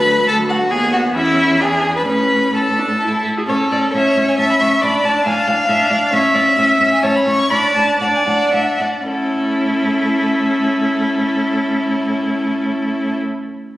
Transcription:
Already playing: cello D2, violin B4 B5
0.06 viola A3
0.16 viola F#3
0.27 cello D2, viola A3, violin A4 A5
0.39 viola F#3
0.49 viola A3, violin F#4 F#5
0.60 viola F#3
0.71 cello D#2, viola B3, violin G#4 G#5
0.92 violin F#4 F#5
1.15 cello E2, viola C#4, violin E4 E5
1.61 viola D4, violin G#4 G#5
1.96 violin B4 B5
2.07 cello A2, viola C#4, violin B4 B5
2.55 viola C#4, violin A4 A5
2.78 viola D4
3.01 viola E4
3.38 viola G#4
3.48 cello A2, viola C#4, violin A4 C#5
3.71 cello A2, viola C#4, violin D5
3.94 cello A2, viola C#4, violin C#5 E5
4.16 cello A2, viola C#4
4.28 violin G#5
4.38 cello A2, viola C#4, violin E5 A5
4.50 violin B5
4.61 cello A2, viola C#4, violin C#6
4.82 cello A2, viola D4, violin D5 B5
5.04 cello A2, viola D4, violin A5
5.26 cello A2, viola D4, violin F5 G#5
5.38 violin A5
5.48 cello A2, viola D4, violin F5
5.69 cello A2, viola D4, violin E5
5.90 cello A2, viola D4, violin D5
6.12 cello A2, viola C#4, violin C#5 E5
6.35 cello A2, viola C#4, violin D5
6.57 cello A2, viola C#4, violin E5
6.80 cello A2, viola C#4
6.93 violin G#5
7.03 cello A2, viola C#4, violin C#5 A5
7.16 violin B5
7.26 cello A2, viola C#4, violin C#6
7.50 cello A2, viola D4, violin D5 B5
7.75 cello A2, viola D4, violin A5
8.00 cello A2, viola D4, violin D5 F#5
8.15 violin G#5
8.25 cello A2, viola D4, violin F#5
8.52 cello A2, viola D4, violin E5 F#5
8.80 cello A2, viola D4, violin D5
9.08 cello A2, viola C#4, violin E4 A4

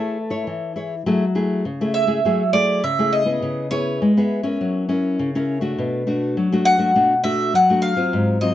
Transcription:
Already playing: nylon-string guitar A3 E4 G#4 C#5, mandolin A4
0.30 nylon-string guitar E4 C#5
0.47 nylon-string guitar E3
0.76 nylon-string guitar E4 G#4 C#5
1.06 nylon-string guitar F#3 A3 E4 G#4
1.35 nylon-string guitar A3 E4 G#4
1.65 nylon-string guitar C#3
1.81 nylon-string guitar A3 E4 G#4
1.94 mandolin E5
2.07 nylon-string guitar A3 E4 G#4
2.25 nylon-string guitar F#3 A3 E4 G#4
2.53 nylon-string guitar A3 E4 G#4, mandolin D5
2.84 nylon-string guitar C#3, mandolin E5
2.99 nylon-string guitar A3 E4 G#4
3.13 mandolin D#5
3.26 nylon-string guitar B3 E4 G#4
3.42 nylon-string guitar C#3
3.71 nylon-string guitar B3 E4 G#4, mandolin C#5
4.02 nylon-string guitar G#3
4.17 nylon-string guitar B3 E4 G#4
4.43 nylon-string guitar C#4 E4 A#4
4.61 nylon-string guitar F#3
4.89 nylon-string guitar C#4 E4 A#4
5.19 nylon-string guitar C#3
5.35 nylon-string guitar C#4 E4 A#4
5.61 nylon-string guitar A3 D4 F#4
5.78 nylon-string guitar B2
6.07 nylon-string guitar A3 D4 F#4
6.37 nylon-string guitar F#3
6.52 nylon-string guitar A3 D4 F#4
6.65 mandolin F#5
6.78 nylon-string guitar A3 D4 F#4
6.95 nylon-string guitar B2 A3 D4 F#4
7.24 nylon-string guitar A3 D4 F#4, mandolin E5
7.54 nylon-string guitar F#3, mandolin F#5
7.70 nylon-string guitar A3 D4 F#4
7.82 mandolin F5
7.96 nylon-string guitar F#3 C4 F4
8.13 nylon-string guitar G#2
8.41 nylon-string guitar F#3 C4 F4, mandolin D#5

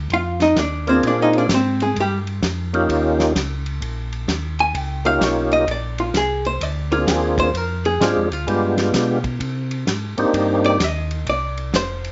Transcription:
0.10 tonewheel organ F2, hollow-body jazz guitar F4 F5, kick, ride
0.40 hollow-body jazz guitar D#4 D#5, snare, ride
0.56 tonewheel organ D#2, hollow-body jazz guitar D4 D5, kick, snare, hi-hat pedal, ride
0.87 tonewheel organ A#3 C4 D4 F4 G#4, hollow-body jazz guitar C4 C5, ride
1.03 tonewheel organ A#2, kick, ride
1.07 hollow-body jazz guitar D4 D5
1.22 hollow-body jazz guitar D#4 D#5
1.33 ride
1.38 hollow-body jazz guitar D4 D5
1.49 tonewheel organ G#2, kick, snare, hi-hat pedal, ride
1.54 hollow-body jazz guitar C4 C5
1.80 hollow-body jazz guitar G#3 G#4, ride
1.96 tonewheel organ G2, kick, ride
2.00 hollow-body jazz guitar G3 G4
2.27 ride
2.43 tonewheel organ F2, kick, snare, hi-hat pedal, ride
2.73 tonewheel organ A#3 C#4 D#4 F4 G4, ride
2.89 tonewheel organ D#2, kick, ride
3.20 snare, ride
3.35 tonewheel organ C#2, kick, snare, hi-hat pedal, ride
3.66 ride
3.81 tonewheel organ A#1, kick, ride
4.13 ride
4.28 tonewheel organ D#2, kick, snare, hi-hat pedal, ride
4.59 hollow-body jazz guitar G#5, ride
4.75 tonewheel organ C#2, hollow-body jazz guitar G5, kick, ride
5.05 tonewheel organ A#3 C#4 D#4 F4 G4, hollow-body jazz guitar F5, ride
5.21 tonewheel organ B1, hollow-body jazz guitar C#5, kick, snare, hi-hat pedal, ride
5.52 hollow-body jazz guitar D#5, ride
5.67 tonewheel organ A#1, hollow-body jazz guitar D5, kick, ride
5.98 hollow-body jazz guitar F4, ride
6.14 tonewheel organ C2, hollow-body jazz guitar G#4, kick, snare, hi-hat pedal, ride
6.45 hollow-body jazz guitar C5, ride
6.61 tonewheel organ D2, hollow-body jazz guitar D5, kick, ride
6.91 tonewheel organ A#3 C4 D4 F4 G#4, hollow-body jazz guitar F4, ride
7.07 tonewheel organ D#2, hollow-body jazz guitar G#4, kick, snare, hi-hat pedal, ride
7.38 hollow-body jazz guitar C5, kick, ride
7.54 tonewheel organ F2, hollow-body jazz guitar A#4, kick, ride
7.85 hollow-body jazz guitar G#4, ride
8.00 tonewheel organ G#2 G#3 C4 D4 F4 G#4, hollow-body jazz guitar G4, kick, snare, hi-hat pedal, ride
8.17 tonewheel organ F2
8.32 tonewheel organ D2, hollow-body jazz guitar F4, ride
8.47 tonewheel organ G2 G#3 B3 D4 F4 G4, kick, ride
8.78 snare, ride
8.94 tonewheel organ B2, kick, snare, hi-hat pedal, ride
9.24 kick, ride
9.40 tonewheel organ C3, kick, ride
9.71 ride
9.87 tonewheel organ G#2, kick, snare, hi-hat pedal, ride
10.17 tonewheel organ G#2 A#3 C4 D4 D#4 G4, ride
10.33 tonewheel organ G2, kick, ride
10.64 hollow-body jazz guitar D5, ride
10.80 tonewheel organ D#2, kick, snare, hi-hat pedal, ride
10.84 hollow-body jazz guitar D#5
11.11 ride
11.27 tonewheel organ C2, hollow-body jazz guitar D5, kick, ride
11.57 ride
11.73 tonewheel organ F1, hollow-body jazz guitar C5, kick, snare, hi-hat pedal, ride
12.04 ride

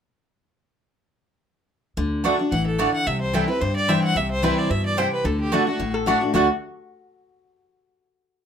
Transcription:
1.97 upright bass D2, steel-string acoustic guitar D3
2.24 steel-string acoustic guitar D3 A3 D4 F#4, mandolin A3 F#4 D5 F#5
2.39 steel-string acoustic guitar D4 F#4
2.52 upright bass A1, steel-string acoustic guitar E3, fiddle F#5
2.67 fiddle A4
2.79 steel-string acoustic guitar D3, mandolin A3 F#4 D5 F#5, fiddle D5
2.94 fiddle F#5
3.06 upright bass C2, steel-string acoustic guitar C3, fiddle E5
3.21 fiddle C5
3.33 steel-string acoustic guitar E3 G3 C4 E4, mandolin C4 E4 C5 G5, fiddle A4
3.48 steel-string acoustic guitar C4 E4, fiddle B4
3.61 steel-string acoustic guitar G2, upright bass G2, fiddle C5
3.76 fiddle D5
3.88 steel-string acoustic guitar E3 G3 C4 E4, mandolin C4 E4 C5 G5, fiddle E5
4.04 fiddle F#5
4.16 upright bass C2, steel-string acoustic guitar C3, fiddle E5
4.31 fiddle C5
4.42 steel-string acoustic guitar E3 G3 C4 E4, mandolin C4 E4 C5 G5, fiddle B4
4.58 fiddle D5
4.70 upright bass G2, steel-string acoustic guitar B2, fiddle E5
4.86 fiddle D5
4.97 steel-string acoustic guitar C3, mandolin C4 E4 C5 G5, fiddle C5
5.13 fiddle B4
5.24 upright bass D2, steel-string acoustic guitar D3, fiddle A4
5.40 fiddle G4
5.52 steel-string acoustic guitar D3 A3 D4 F#4, mandolin A3 F#4 D5 F#5, fiddle F#4
5.67 steel-string acoustic guitar D4 F#4, fiddle F#4
5.79 upright bass A1, steel-string acoustic guitar A2
5.94 resonator guitar played with a steel bar A4
6.06 steel-string acoustic guitar D3 A3 D4 F#4, mandolin A3 F#4 D5 F#5
6.21 steel-string acoustic guitar D4 F#4
6.34 upright bass D2, steel-string acoustic guitar D3 A3 D4 F#4, mandolin A3 F#4 D5 F#5, fiddle F#4

